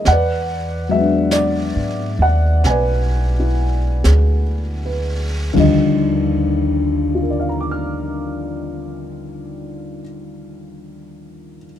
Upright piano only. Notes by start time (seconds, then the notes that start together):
0.08 F#5
0.12 B4 D5
0.89 F#3 G#3 E5
0.96 B3
1.00 D4
1.32 D5
2.22 F#5
2.66 B4 D5 G#5
3.40 E4
4.03 G#4
4.86 B4
5.54 D#2 D3 D#3 F3 G3
5.59 D#5
7.15 F4
7.22 A#4
7.30 D5
7.40 F5
7.49 A#5
7.61 D6
7.71 F6